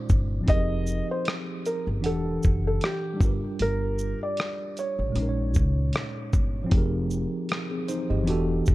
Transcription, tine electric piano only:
Already playing: A#2 G#3 C#4 D#4 F4 C5 D5
0.41 F3 C4
0.46 D#4 G4
0.52 G#4 A#4
2.00 E3 D4 F#5
2.06 G4 A4
3.14 G3 D4
3.19 F4 G4
3.25 A#4 B4
5.09 A#2 G#3
5.15 C#4 D#4
5.22 A#4
5.29 C#5
6.64 F3 C4
6.69 D#4 G4
6.75 G#4 A#4
7.71 C4 G#4
7.88 D#4 C5
8.10 G4 D#5
8.23 E3 B3 D4
8.28 F#4 G4 A4

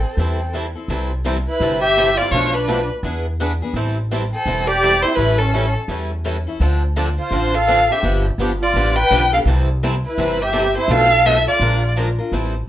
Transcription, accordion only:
Already playing: C4
1.48 E4
1.81 G4
2.15 F4
2.30 F4
2.53 D4
4.32 C4
4.67 G4
5.00 E4
5.14 E4
5.37 C#4
7.18 F4
7.56 A4
7.90 G4
8.62 F4
8.96 B4
9.32 A4
10.05 E4
10.41 G4
10.77 E4
10.90 A4
11.24 A4
11.47 F4

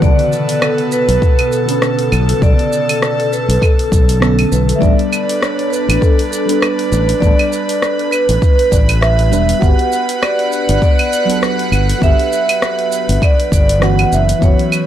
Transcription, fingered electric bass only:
0.02 B1
1.08 B1
2.12 B1
2.42 B1
3.49 B1
3.92 B1
4.52 B1
4.82 A1
5.89 A1
6.92 A1
7.22 A1
8.29 A1
8.72 A1
9.32 E1
9.62 G1
10.69 G1
11.72 G1
12.02 G1
13.09 G1
13.52 G1
14.12 F#1
14.42 F#1

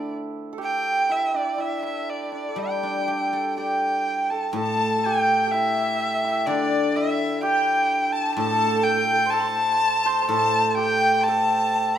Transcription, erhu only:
Already playing: D5
0.63 G5
1.12 E5
1.36 D5
1.61 E5
1.86 E5
2.09 D5
2.35 D5
2.59 G5
3.58 G5
4.30 A5
4.54 A5
5.04 G5
5.51 E5
6.46 D5
6.95 E5
7.42 G5
8.13 A5
8.35 A5
8.84 G5
9.31 A5
10.27 A5
10.71 A5
10.75 G5
11.24 A5

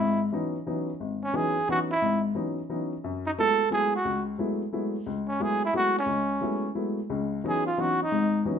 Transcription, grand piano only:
Already playing: G#1
0.00 G#2
0.32 E3 F#3 B3 C#4 D#4
0.67 E3 F#3 B3 C#4 D#4
1.00 G#1
1.33 E3 F#3 B3 C#4 D#4
1.69 E3 F#3 B3 C#4 D#4
2.02 G#1 G#2
2.35 E3 F#3 B3 C#4 D#4
2.70 E3 F#3 B3 C#4 D#4
3.04 F#2
3.38 F#3 G#3 A3 B3 E4
3.70 F#3 G#3 A3 B3 E4
4.05 C#2
4.38 F#3 G#3 A3 B3 E4
4.72 F#3 G#3 A3 B3 E4
5.07 C#2
5.40 F#3 G#3 A3 B3 E4
5.74 F#3 G#3 A3 B3 E4
6.06 C#2
6.41 F#3 G#3 A3 B3 E4
6.75 F#3 G#3 A3 B3 E4
7.10 C#2 C#3
7.44 E3 F#3 B3 C#4 D#4
7.78 E3 F#3 B3 C#4 D#4
8.12 G#1 G#2
8.45 E3 F#3 B3 C#4 D#4

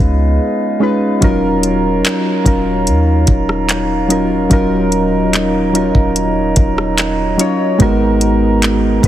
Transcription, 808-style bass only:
0.00 C#2
1.23 D#1
2.46 D#1
2.87 D#2
3.28 D#1
4.51 D#1
5.95 D#1
6.57 D#1
7.80 G#1
9.03 G#1

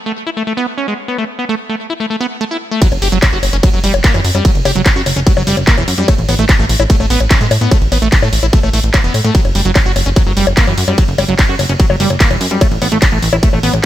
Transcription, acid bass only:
0.06 A3
0.27 E4
0.37 A3
0.47 A3
0.57 B3
0.78 C#4
0.88 G#3
1.08 B3
1.18 A3
1.39 B3
1.49 A3
1.69 A3
1.90 E4
2.00 A3
2.10 A3
2.20 B3
2.41 A3
2.51 E4
2.71 A3
2.82 F#3
3.02 G4
3.12 F#3
3.33 F#4
3.53 C#4
3.63 F#3
3.73 F#3
3.84 G3
4.04 A#3
4.14 E3
4.35 G3
4.45 F#3
4.65 G4
4.76 F#3
4.96 F#4
5.16 C#4
5.27 F#3
5.37 F#3
5.47 G3
5.67 A#3
5.78 E3
5.98 G3
6.08 A3
6.29 B3
6.39 A3
6.59 A3
6.80 E4
6.90 A3
7.00 A3
7.10 B3
7.31 C#4
7.41 G#3
7.61 B3
7.71 A3
7.92 B3
8.02 A3
8.22 A3
8.43 E4
8.53 A3
8.63 A3
8.73 A3
8.94 B3
9.04 B3
9.24 A3
9.35 F#3
9.55 G3
9.65 F#3
9.86 F#4
10.06 C#4
10.16 F#3
10.27 F#3
10.37 G3
10.57 A#3
10.67 E3
10.88 G3
10.98 F#3
11.18 G3
11.29 F#3
11.49 F#4
11.69 C#4
11.80 F#3
11.90 F#3
12.00 G3
12.20 A#3
12.31 E3
12.51 G3
12.61 A3
12.82 B3
12.92 A3
13.12 A3
13.33 E4
13.43 A3
13.53 A3
13.63 B3

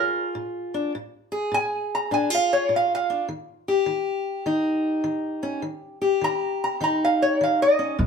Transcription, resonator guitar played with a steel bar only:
Already playing: A#4
1.54 G#5
1.95 A#5
2.14 G#5
2.35 F5
2.53 C#5
2.76 F5
2.95 F5
6.24 A#5
6.64 A#5
6.84 A#5
7.05 F5
7.22 C#5
7.44 F5
7.62 D#5

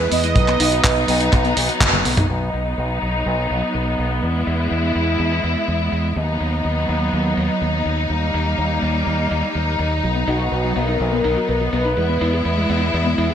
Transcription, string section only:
Already playing: G#3 B3 E4
0.36 F#3 B3 D#4
2.29 F#3 B3 D#4
4.23 G#3 E4
6.16 F#3 B3 D#4
8.10 G3 A#3
10.03 F#3 B3
11.97 G#3 E4

